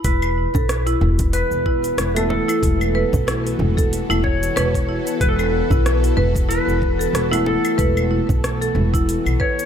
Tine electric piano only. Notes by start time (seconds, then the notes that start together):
2.14 A3 B3 E4 A4
4.09 A3 B3 E4 A4
7.31 A3 B3 E4 A4